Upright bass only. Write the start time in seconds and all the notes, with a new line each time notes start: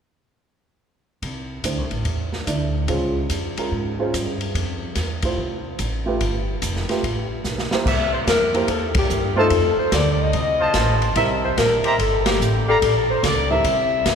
1.23 C2
1.64 D2
1.78 C2
1.92 A1
2.05 E2
2.47 D2
2.88 C#2
3.30 F2
3.57 muted upright bass stroke
3.72 G#2
4.14 G2
4.55 F2
4.96 E2
5.38 C2
5.79 A1
6.20 G1
6.62 F1
6.89 muted upright bass stroke
7.03 A1
7.44 B1
7.72 muted upright bass stroke
7.86 C2
8.27 F2
8.68 E2
9.10 G2
9.50 F2
9.77 muted upright bass stroke
9.92 D2
10.34 C2
10.74 A1
11.16 C2
11.57 A#1
11.85 muted upright bass stroke
11.98 G1
12.40 A1
12.82 A#1
13.23 C#2
13.64 C2
14.06 E2